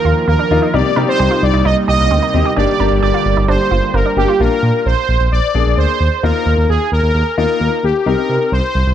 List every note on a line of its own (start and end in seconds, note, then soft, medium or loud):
0.00 0.72 D#3 medium
0.00 0.70 F3 medium
0.00 0.70 A#3 medium
0.00 0.70 F4 medium
0.00 0.27 A#4 loud
0.05 0.13 D#2 loud
0.05 0.17 F4 medium
0.28 0.36 D#2 loud
0.28 0.34 A#3 medium
0.28 0.75 A#4 medium
0.39 0.52 D4 medium
0.51 0.59 D#2 medium
0.51 0.64 A#3 medium
0.51 0.64 D#4 medium
0.51 0.64 F4 medium
0.62 0.68 D#4 medium
0.74 0.82 C2 loud
0.74 2.55 C3 medium
0.74 4.36 G3 medium
0.74 4.36 A#3 medium
0.74 0.87 C4 medium
0.74 0.86 D#4 medium
0.74 2.55 D#4 medium
0.74 0.87 D#4 medium
0.74 0.87 G4 medium
0.74 1.09 D5 loud
0.96 1.05 C3 loud
0.96 1.49 C4 medium
0.96 1.49 D#4 medium
0.96 1.49 G4 medium
0.96 1.09 A#4 medium
1.08 1.43 C5 loud
1.19 1.28 C2 loud
1.19 1.26 G4 medium
1.31 1.43 F4 medium
1.42 1.51 C2 loud
1.42 1.66 D5 loud
1.54 1.62 C2 loud
1.54 1.60 D#4 medium
1.65 1.74 C2 loud
1.65 1.78 D#4 medium
1.65 1.76 D#5 loud
1.88 1.97 C2 loud
1.88 2.00 G4 medium
1.88 2.53 D#5 loud
2.00 2.08 C2 loud
2.11 2.20 D2 loud
2.11 2.17 C4 medium
2.23 2.35 D#4 medium
2.34 2.42 D#2 loud
2.34 2.47 C4 medium
2.34 2.47 D#4 medium
2.34 2.47 G4 medium
2.45 2.52 G4 medium
2.56 2.65 G1 loud
2.56 4.38 D3 medium
2.56 2.70 A#3 medium
2.56 2.70 D4 medium
2.56 2.69 G4 medium
2.56 4.38 G4 medium
2.56 2.70 G4 medium
2.56 3.01 D5 loud
2.80 2.88 G1 loud
2.80 3.32 A#3 medium
2.80 3.32 D4 medium
2.80 3.32 G4 medium
2.80 2.92 A#4 medium
2.91 3.00 G1 loud
3.02 3.11 G1 loud
3.02 3.09 G4 medium
3.02 3.45 D5 loud
3.14 3.26 F4 medium
3.26 3.34 G1 loud
3.37 3.46 G1 medium
3.37 3.43 D#4 medium
3.48 3.57 G1 loud
3.48 3.61 D4 medium
3.48 3.96 C5 loud
3.71 3.80 G1 medium
3.71 3.84 F4 medium
3.94 4.03 G1 loud
3.94 4.00 A#3 medium
3.94 4.26 A#4 medium
4.06 4.18 D4 medium
4.17 4.25 G1 loud
4.17 4.30 A#3 medium
4.17 4.30 D4 medium
4.17 4.41 G4 medium
4.17 4.30 G4 medium
4.28 4.35 F4 medium
4.40 4.48 A#1 loud
4.40 4.93 A#3 medium
4.40 4.92 D4 medium
4.40 4.93 F4 medium
4.40 4.87 A#4 loud
4.63 4.71 A#2 loud
4.86 4.94 A#1 loud
4.86 5.33 C5 loud
5.09 5.17 A#1 medium
5.20 5.29 A#1 loud
5.32 5.40 A#1 loud
5.32 5.79 D5 loud
5.54 5.63 A#1 loud
5.54 5.94 A#3 medium
5.54 5.94 D4 medium
5.54 5.94 G#4 medium
5.66 5.74 A#1 medium
5.77 5.86 D2 medium
5.77 6.25 C5 loud
6.00 6.09 D#2 medium
6.23 6.32 D#2 loud
6.23 6.76 A#3 medium
6.23 6.76 D#4 medium
6.23 6.76 F4 medium
6.23 6.70 A#4 loud
6.46 6.55 D#2 loud
6.58 6.66 D#2 loud
6.69 6.77 D#2 loud
6.69 6.90 G#4 loud
6.92 7.00 D#2 loud
6.92 7.37 A#4 loud
7.03 7.12 D#2 loud
7.14 7.23 D#2 loud
7.37 7.46 D#2 loud
7.37 7.77 A#3 medium
7.37 7.77 D#4 medium
7.37 7.77 F4 medium
7.37 7.85 A#4 loud
7.60 7.69 D#2 loud
7.83 7.92 D#2 medium
7.83 8.07 G4 medium
8.06 8.15 C2 loud
8.06 8.59 C4 medium
8.06 8.59 D#4 medium
8.06 8.59 G4 medium
8.06 8.54 A#4 loud
8.29 8.38 C3 loud
8.52 8.61 C2 loud
8.52 8.94 C5 loud
8.75 8.84 C2 loud
8.86 8.94 C2 loud